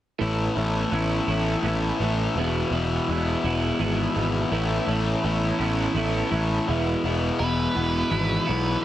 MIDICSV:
0, 0, Header, 1, 5, 480
1, 0, Start_track
1, 0, Key_signature, 3, "major"
1, 0, Tempo, 717703
1, 148, Time_signature, 6, 3, 24, 8
1, 5916, End_track
2, 0, Start_track
2, 0, Title_t, "Lead electric guitar"
2, 0, Program_c, 0, 29
2, 4946, Note_on_c, 0, 71, 75
2, 5901, Note_off_c, 0, 71, 0
2, 5916, End_track
3, 0, Start_track
3, 0, Title_t, "Clean electric guitar"
3, 0, Program_c, 1, 27
3, 126, Note_on_c, 1, 45, 73
3, 135, Note_on_c, 1, 52, 74
3, 139, Note_on_c, 1, 59, 77
3, 141, Note_on_c, 1, 61, 70
3, 146, Note_on_c, 1, 64, 91
3, 365, Note_off_c, 1, 64, 0
3, 368, Note_on_c, 1, 64, 57
3, 375, Note_off_c, 1, 61, 0
3, 383, Note_on_c, 1, 61, 54
3, 386, Note_off_c, 1, 59, 0
3, 389, Note_on_c, 1, 59, 49
3, 611, Note_off_c, 1, 52, 0
3, 613, Note_off_c, 1, 59, 0
3, 614, Note_on_c, 1, 52, 57
3, 615, Note_off_c, 1, 45, 0
3, 616, Note_on_c, 1, 59, 64
3, 621, Note_off_c, 1, 61, 0
3, 629, Note_off_c, 1, 64, 0
3, 629, Note_on_c, 1, 61, 60
3, 631, Note_on_c, 1, 64, 64
3, 853, Note_off_c, 1, 64, 0
3, 856, Note_on_c, 1, 64, 63
3, 859, Note_off_c, 1, 61, 0
3, 867, Note_on_c, 1, 61, 57
3, 870, Note_off_c, 1, 59, 0
3, 873, Note_on_c, 1, 59, 47
3, 1087, Note_off_c, 1, 52, 0
3, 1090, Note_on_c, 1, 52, 65
3, 1095, Note_off_c, 1, 61, 0
3, 1097, Note_off_c, 1, 59, 0
3, 1100, Note_on_c, 1, 59, 67
3, 1103, Note_on_c, 1, 61, 64
3, 1106, Note_off_c, 1, 64, 0
3, 1109, Note_on_c, 1, 64, 68
3, 1335, Note_off_c, 1, 64, 0
3, 1337, Note_off_c, 1, 61, 0
3, 1338, Note_on_c, 1, 64, 67
3, 1345, Note_on_c, 1, 61, 56
3, 1352, Note_off_c, 1, 59, 0
3, 1355, Note_on_c, 1, 59, 57
3, 1570, Note_off_c, 1, 61, 0
3, 1585, Note_on_c, 1, 40, 73
3, 1589, Note_off_c, 1, 52, 0
3, 1590, Note_on_c, 1, 47, 81
3, 1591, Note_on_c, 1, 52, 75
3, 1593, Note_off_c, 1, 59, 0
3, 1595, Note_on_c, 1, 56, 77
3, 1601, Note_on_c, 1, 59, 92
3, 1603, Note_off_c, 1, 64, 0
3, 1606, Note_on_c, 1, 64, 79
3, 1821, Note_off_c, 1, 64, 0
3, 1824, Note_on_c, 1, 64, 67
3, 1826, Note_off_c, 1, 59, 0
3, 1828, Note_on_c, 1, 59, 50
3, 1830, Note_off_c, 1, 56, 0
3, 1838, Note_off_c, 1, 52, 0
3, 1838, Note_on_c, 1, 56, 59
3, 1841, Note_on_c, 1, 52, 48
3, 2061, Note_off_c, 1, 52, 0
3, 2062, Note_off_c, 1, 56, 0
3, 2064, Note_off_c, 1, 40, 0
3, 2064, Note_on_c, 1, 52, 51
3, 2067, Note_off_c, 1, 47, 0
3, 2070, Note_on_c, 1, 56, 62
3, 2076, Note_off_c, 1, 59, 0
3, 2079, Note_on_c, 1, 59, 58
3, 2084, Note_off_c, 1, 64, 0
3, 2086, Note_on_c, 1, 64, 60
3, 2301, Note_off_c, 1, 64, 0
3, 2304, Note_on_c, 1, 64, 69
3, 2306, Note_off_c, 1, 56, 0
3, 2309, Note_off_c, 1, 59, 0
3, 2312, Note_on_c, 1, 59, 55
3, 2314, Note_on_c, 1, 56, 55
3, 2319, Note_off_c, 1, 52, 0
3, 2322, Note_on_c, 1, 52, 48
3, 2531, Note_off_c, 1, 52, 0
3, 2534, Note_on_c, 1, 52, 63
3, 2535, Note_off_c, 1, 56, 0
3, 2544, Note_on_c, 1, 56, 77
3, 2546, Note_off_c, 1, 59, 0
3, 2548, Note_on_c, 1, 59, 67
3, 2552, Note_off_c, 1, 64, 0
3, 2554, Note_on_c, 1, 64, 70
3, 2775, Note_off_c, 1, 64, 0
3, 2778, Note_on_c, 1, 64, 64
3, 2782, Note_off_c, 1, 59, 0
3, 2785, Note_on_c, 1, 59, 54
3, 2786, Note_off_c, 1, 56, 0
3, 2794, Note_on_c, 1, 56, 52
3, 2796, Note_off_c, 1, 52, 0
3, 2799, Note_on_c, 1, 52, 47
3, 3012, Note_on_c, 1, 45, 70
3, 3014, Note_off_c, 1, 56, 0
3, 3019, Note_off_c, 1, 52, 0
3, 3022, Note_on_c, 1, 52, 74
3, 3028, Note_off_c, 1, 59, 0
3, 3028, Note_on_c, 1, 59, 83
3, 3029, Note_off_c, 1, 64, 0
3, 3032, Note_on_c, 1, 61, 74
3, 3032, Note_on_c, 1, 64, 78
3, 3248, Note_off_c, 1, 64, 0
3, 3251, Note_on_c, 1, 64, 60
3, 3253, Note_off_c, 1, 61, 0
3, 3261, Note_on_c, 1, 61, 60
3, 3269, Note_off_c, 1, 59, 0
3, 3272, Note_on_c, 1, 59, 53
3, 3487, Note_off_c, 1, 52, 0
3, 3489, Note_on_c, 1, 52, 57
3, 3497, Note_off_c, 1, 61, 0
3, 3498, Note_off_c, 1, 45, 0
3, 3498, Note_off_c, 1, 59, 0
3, 3501, Note_on_c, 1, 59, 63
3, 3505, Note_on_c, 1, 61, 56
3, 3508, Note_off_c, 1, 64, 0
3, 3510, Note_on_c, 1, 64, 68
3, 3735, Note_off_c, 1, 64, 0
3, 3737, Note_on_c, 1, 64, 60
3, 3740, Note_off_c, 1, 61, 0
3, 3748, Note_on_c, 1, 61, 52
3, 3755, Note_off_c, 1, 59, 0
3, 3757, Note_on_c, 1, 59, 54
3, 3978, Note_off_c, 1, 52, 0
3, 3981, Note_on_c, 1, 52, 69
3, 3989, Note_off_c, 1, 59, 0
3, 3989, Note_off_c, 1, 61, 0
3, 3991, Note_on_c, 1, 59, 62
3, 3997, Note_on_c, 1, 61, 71
3, 4001, Note_off_c, 1, 64, 0
3, 4004, Note_on_c, 1, 64, 76
3, 4217, Note_off_c, 1, 64, 0
3, 4220, Note_off_c, 1, 61, 0
3, 4220, Note_on_c, 1, 64, 65
3, 4228, Note_on_c, 1, 61, 55
3, 4237, Note_off_c, 1, 59, 0
3, 4240, Note_on_c, 1, 59, 53
3, 4452, Note_off_c, 1, 61, 0
3, 4463, Note_on_c, 1, 40, 84
3, 4470, Note_off_c, 1, 52, 0
3, 4470, Note_on_c, 1, 47, 81
3, 4473, Note_on_c, 1, 52, 83
3, 4475, Note_off_c, 1, 59, 0
3, 4478, Note_on_c, 1, 56, 91
3, 4481, Note_off_c, 1, 64, 0
3, 4482, Note_on_c, 1, 59, 89
3, 4483, Note_on_c, 1, 64, 90
3, 4700, Note_off_c, 1, 64, 0
3, 4706, Note_off_c, 1, 59, 0
3, 4708, Note_on_c, 1, 64, 58
3, 4714, Note_off_c, 1, 56, 0
3, 4714, Note_on_c, 1, 59, 60
3, 4720, Note_off_c, 1, 52, 0
3, 4722, Note_on_c, 1, 56, 55
3, 4728, Note_on_c, 1, 52, 48
3, 4934, Note_off_c, 1, 52, 0
3, 4942, Note_off_c, 1, 56, 0
3, 4942, Note_on_c, 1, 52, 51
3, 4944, Note_off_c, 1, 40, 0
3, 4945, Note_off_c, 1, 59, 0
3, 4947, Note_off_c, 1, 47, 0
3, 4950, Note_on_c, 1, 56, 59
3, 4951, Note_off_c, 1, 64, 0
3, 4953, Note_on_c, 1, 59, 70
3, 4959, Note_on_c, 1, 64, 72
3, 5171, Note_off_c, 1, 64, 0
3, 5177, Note_off_c, 1, 59, 0
3, 5179, Note_on_c, 1, 64, 59
3, 5185, Note_off_c, 1, 56, 0
3, 5185, Note_on_c, 1, 59, 63
3, 5190, Note_off_c, 1, 52, 0
3, 5193, Note_on_c, 1, 56, 51
3, 5199, Note_on_c, 1, 52, 47
3, 5410, Note_off_c, 1, 52, 0
3, 5417, Note_off_c, 1, 56, 0
3, 5418, Note_off_c, 1, 59, 0
3, 5418, Note_on_c, 1, 52, 65
3, 5425, Note_off_c, 1, 64, 0
3, 5426, Note_on_c, 1, 56, 74
3, 5426, Note_on_c, 1, 59, 73
3, 5433, Note_on_c, 1, 64, 75
3, 5642, Note_off_c, 1, 64, 0
3, 5650, Note_on_c, 1, 64, 72
3, 5653, Note_off_c, 1, 59, 0
3, 5659, Note_off_c, 1, 56, 0
3, 5661, Note_off_c, 1, 52, 0
3, 5661, Note_on_c, 1, 59, 62
3, 5667, Note_on_c, 1, 56, 57
3, 5669, Note_on_c, 1, 52, 59
3, 5883, Note_off_c, 1, 64, 0
3, 5889, Note_off_c, 1, 59, 0
3, 5892, Note_off_c, 1, 56, 0
3, 5893, Note_off_c, 1, 52, 0
3, 5916, End_track
4, 0, Start_track
4, 0, Title_t, "Distorted electric guitar"
4, 0, Program_c, 2, 30
4, 139, Note_on_c, 2, 45, 79
4, 143, Note_on_c, 2, 52, 88
4, 149, Note_on_c, 2, 57, 82
4, 371, Note_off_c, 2, 45, 0
4, 379, Note_on_c, 2, 45, 70
4, 384, Note_off_c, 2, 57, 0
4, 385, Note_off_c, 2, 52, 0
4, 388, Note_on_c, 2, 52, 80
4, 392, Note_on_c, 2, 57, 79
4, 614, Note_off_c, 2, 45, 0
4, 622, Note_on_c, 2, 45, 79
4, 623, Note_off_c, 2, 52, 0
4, 626, Note_off_c, 2, 57, 0
4, 626, Note_on_c, 2, 52, 77
4, 634, Note_on_c, 2, 57, 85
4, 860, Note_off_c, 2, 45, 0
4, 864, Note_off_c, 2, 57, 0
4, 865, Note_off_c, 2, 52, 0
4, 868, Note_on_c, 2, 45, 59
4, 868, Note_on_c, 2, 52, 72
4, 872, Note_on_c, 2, 57, 63
4, 1103, Note_off_c, 2, 45, 0
4, 1111, Note_on_c, 2, 45, 76
4, 1115, Note_off_c, 2, 57, 0
4, 1116, Note_off_c, 2, 52, 0
4, 1119, Note_on_c, 2, 52, 70
4, 1123, Note_on_c, 2, 57, 83
4, 1346, Note_off_c, 2, 45, 0
4, 1352, Note_off_c, 2, 52, 0
4, 1352, Note_off_c, 2, 57, 0
4, 1354, Note_on_c, 2, 45, 62
4, 1355, Note_on_c, 2, 52, 72
4, 1360, Note_on_c, 2, 57, 72
4, 1574, Note_off_c, 2, 45, 0
4, 1578, Note_off_c, 2, 57, 0
4, 1593, Note_on_c, 2, 40, 81
4, 1598, Note_off_c, 2, 52, 0
4, 1599, Note_on_c, 2, 47, 83
4, 1601, Note_on_c, 2, 52, 86
4, 1821, Note_off_c, 2, 40, 0
4, 1827, Note_off_c, 2, 47, 0
4, 1829, Note_on_c, 2, 40, 64
4, 1835, Note_off_c, 2, 52, 0
4, 1836, Note_on_c, 2, 47, 79
4, 1838, Note_on_c, 2, 52, 75
4, 2061, Note_off_c, 2, 40, 0
4, 2069, Note_on_c, 2, 40, 72
4, 2070, Note_off_c, 2, 47, 0
4, 2077, Note_off_c, 2, 52, 0
4, 2078, Note_on_c, 2, 47, 74
4, 2080, Note_on_c, 2, 52, 83
4, 2299, Note_off_c, 2, 40, 0
4, 2306, Note_off_c, 2, 47, 0
4, 2307, Note_on_c, 2, 40, 66
4, 2314, Note_off_c, 2, 52, 0
4, 2314, Note_on_c, 2, 47, 63
4, 2317, Note_on_c, 2, 52, 67
4, 2536, Note_off_c, 2, 40, 0
4, 2542, Note_off_c, 2, 47, 0
4, 2544, Note_on_c, 2, 40, 82
4, 2550, Note_on_c, 2, 47, 68
4, 2551, Note_off_c, 2, 52, 0
4, 2553, Note_on_c, 2, 52, 78
4, 2773, Note_off_c, 2, 40, 0
4, 2777, Note_off_c, 2, 47, 0
4, 2781, Note_on_c, 2, 40, 61
4, 2785, Note_on_c, 2, 47, 79
4, 2790, Note_off_c, 2, 52, 0
4, 2793, Note_on_c, 2, 52, 72
4, 3008, Note_off_c, 2, 40, 0
4, 3010, Note_off_c, 2, 47, 0
4, 3026, Note_on_c, 2, 45, 88
4, 3031, Note_off_c, 2, 52, 0
4, 3034, Note_on_c, 2, 52, 79
4, 3038, Note_on_c, 2, 57, 92
4, 3261, Note_off_c, 2, 45, 0
4, 3269, Note_on_c, 2, 45, 69
4, 3273, Note_off_c, 2, 52, 0
4, 3273, Note_off_c, 2, 57, 0
4, 3276, Note_on_c, 2, 52, 73
4, 3281, Note_on_c, 2, 57, 78
4, 3501, Note_off_c, 2, 45, 0
4, 3509, Note_on_c, 2, 45, 75
4, 3512, Note_off_c, 2, 52, 0
4, 3513, Note_off_c, 2, 57, 0
4, 3515, Note_on_c, 2, 52, 78
4, 3521, Note_on_c, 2, 57, 74
4, 3734, Note_off_c, 2, 45, 0
4, 3742, Note_on_c, 2, 45, 71
4, 3746, Note_off_c, 2, 57, 0
4, 3748, Note_off_c, 2, 52, 0
4, 3751, Note_on_c, 2, 52, 75
4, 3754, Note_on_c, 2, 57, 72
4, 3986, Note_off_c, 2, 45, 0
4, 3994, Note_off_c, 2, 52, 0
4, 3994, Note_off_c, 2, 57, 0
4, 3994, Note_on_c, 2, 45, 69
4, 3997, Note_on_c, 2, 52, 81
4, 4002, Note_on_c, 2, 57, 82
4, 4216, Note_off_c, 2, 45, 0
4, 4224, Note_on_c, 2, 45, 75
4, 4229, Note_off_c, 2, 52, 0
4, 4230, Note_off_c, 2, 57, 0
4, 4231, Note_on_c, 2, 52, 77
4, 4238, Note_on_c, 2, 57, 81
4, 4449, Note_off_c, 2, 45, 0
4, 4457, Note_off_c, 2, 57, 0
4, 4466, Note_on_c, 2, 40, 87
4, 4470, Note_on_c, 2, 47, 83
4, 4471, Note_off_c, 2, 52, 0
4, 4474, Note_on_c, 2, 52, 90
4, 4708, Note_off_c, 2, 40, 0
4, 4712, Note_off_c, 2, 47, 0
4, 4715, Note_off_c, 2, 52, 0
4, 4716, Note_on_c, 2, 40, 70
4, 4720, Note_on_c, 2, 47, 79
4, 4723, Note_on_c, 2, 52, 78
4, 4951, Note_off_c, 2, 40, 0
4, 4954, Note_off_c, 2, 47, 0
4, 4958, Note_off_c, 2, 52, 0
4, 4959, Note_on_c, 2, 40, 78
4, 4962, Note_on_c, 2, 47, 77
4, 4967, Note_on_c, 2, 52, 84
4, 5179, Note_off_c, 2, 40, 0
4, 5183, Note_off_c, 2, 47, 0
4, 5187, Note_on_c, 2, 40, 57
4, 5189, Note_off_c, 2, 52, 0
4, 5191, Note_on_c, 2, 47, 63
4, 5197, Note_on_c, 2, 52, 67
4, 5419, Note_off_c, 2, 40, 0
4, 5426, Note_off_c, 2, 47, 0
4, 5427, Note_on_c, 2, 40, 75
4, 5432, Note_off_c, 2, 52, 0
4, 5434, Note_on_c, 2, 47, 78
4, 5440, Note_on_c, 2, 52, 93
4, 5654, Note_off_c, 2, 40, 0
4, 5661, Note_off_c, 2, 47, 0
4, 5662, Note_on_c, 2, 40, 67
4, 5664, Note_off_c, 2, 52, 0
4, 5669, Note_on_c, 2, 47, 77
4, 5672, Note_on_c, 2, 52, 79
4, 5889, Note_off_c, 2, 40, 0
4, 5893, Note_off_c, 2, 47, 0
4, 5894, Note_off_c, 2, 52, 0
4, 5916, End_track
5, 0, Start_track
5, 0, Title_t, "Picked electric bass"
5, 0, Program_c, 3, 34
5, 140, Note_on_c, 3, 33, 73
5, 318, Note_off_c, 3, 33, 0
5, 376, Note_on_c, 3, 33, 69
5, 556, Note_off_c, 3, 33, 0
5, 615, Note_on_c, 3, 33, 69
5, 795, Note_off_c, 3, 33, 0
5, 853, Note_on_c, 3, 33, 77
5, 1033, Note_off_c, 3, 33, 0
5, 1091, Note_on_c, 3, 33, 71
5, 1272, Note_off_c, 3, 33, 0
5, 1337, Note_on_c, 3, 33, 73
5, 1515, Note_off_c, 3, 33, 0
5, 1573, Note_on_c, 3, 28, 74
5, 1753, Note_off_c, 3, 28, 0
5, 1811, Note_on_c, 3, 28, 71
5, 1991, Note_off_c, 3, 28, 0
5, 2061, Note_on_c, 3, 28, 71
5, 2238, Note_off_c, 3, 28, 0
5, 2299, Note_on_c, 3, 28, 82
5, 2477, Note_off_c, 3, 28, 0
5, 2536, Note_on_c, 3, 32, 77
5, 2715, Note_off_c, 3, 32, 0
5, 2782, Note_on_c, 3, 32, 81
5, 2959, Note_off_c, 3, 32, 0
5, 3020, Note_on_c, 3, 33, 86
5, 3197, Note_off_c, 3, 33, 0
5, 3258, Note_on_c, 3, 33, 66
5, 3436, Note_off_c, 3, 33, 0
5, 3505, Note_on_c, 3, 33, 79
5, 3680, Note_off_c, 3, 33, 0
5, 3742, Note_on_c, 3, 33, 73
5, 3919, Note_off_c, 3, 33, 0
5, 3975, Note_on_c, 3, 33, 77
5, 4154, Note_off_c, 3, 33, 0
5, 4224, Note_on_c, 3, 33, 75
5, 4400, Note_off_c, 3, 33, 0
5, 4472, Note_on_c, 3, 28, 89
5, 4645, Note_off_c, 3, 28, 0
5, 4706, Note_on_c, 3, 28, 71
5, 4882, Note_off_c, 3, 28, 0
5, 4947, Note_on_c, 3, 28, 74
5, 5122, Note_off_c, 3, 28, 0
5, 5189, Note_on_c, 3, 28, 80
5, 5364, Note_off_c, 3, 28, 0
5, 5424, Note_on_c, 3, 32, 73
5, 5600, Note_off_c, 3, 32, 0
5, 5679, Note_on_c, 3, 35, 78
5, 5850, Note_off_c, 3, 35, 0
5, 5916, End_track
0, 0, End_of_file